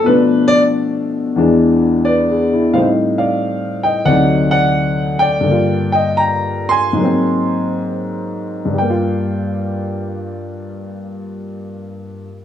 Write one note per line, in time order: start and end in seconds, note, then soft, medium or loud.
0.04 1.36 B2 medium
0.04 1.36 F3 medium
0.04 1.37 A3 soft
0.04 0.47 B4 medium
0.08 1.37 D4 medium
0.48 0.61 D5 loud
1.36 2.74 E2 medium
1.36 2.74 E3 medium
1.36 2.74 G#3 medium
1.36 2.75 D4 medium
2.05 2.48 B4 medium
2.05 2.70 D5 medium
2.30 2.65 G#4 medium
2.53 2.87 E4 soft
2.73 4.06 A2 medium
2.73 4.07 G3 soft
2.73 4.08 C4 soft
2.73 2.85 C5 medium
2.73 2.84 F5 medium
2.78 4.09 D#4 medium
3.18 3.81 D5 medium
3.18 3.87 F5 medium
3.83 4.05 D#5 medium
3.83 4.07 G5 medium
4.05 5.44 D2 medium
4.05 5.45 C3 medium
4.05 4.48 D5 medium
4.05 4.47 F#5 medium
4.09 5.46 F#3 medium
4.09 5.47 D#4 medium
4.51 5.17 D5 medium
4.51 5.17 F#5 loud
5.19 5.90 D5 medium
5.19 5.91 G5 loud
5.41 6.95 G2 medium
5.41 6.97 D3 soft
5.48 6.98 A#3 medium
5.48 7.00 F4 medium
5.92 6.17 D#5 medium
5.92 6.16 G5 medium
6.17 6.67 G5 medium
6.17 6.71 A#5 loud
6.69 7.81 G#5 medium
6.69 7.79 C6 loud
6.93 8.76 G#2 medium
6.93 8.77 F#3 medium
7.00 8.79 A#3 medium
7.04 8.81 C4 medium
8.65 12.27 G2 medium
8.73 12.35 G3 medium
8.78 12.44 A#3 medium
8.78 12.36 G5 medium
8.90 12.45 F4 medium